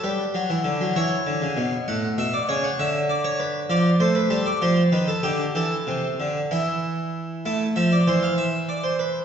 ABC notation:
X:1
M:6/8
L:1/16
Q:3/8=65
K:Bphr
V:1 name="Harpsichord"
B6 ^c6 | f2 e d ^c f e2 d c B2 | [K:Am] d2 c B A d c2 B A G2 | A6 E6 |
E2 e d c f e2 d c B2 |]
V:2 name="Harpsichord" clef=bass
G,2 F, E, D, F, E,2 D, ^C, B,,2 | A,,2 B,,2 ^C,2 D,6 | [K:Am] F,2 A,2 G,2 F,2 _E,2 D,2 | E,2 C,2 D,2 E,6 |
A,2 F,2 E,8 |]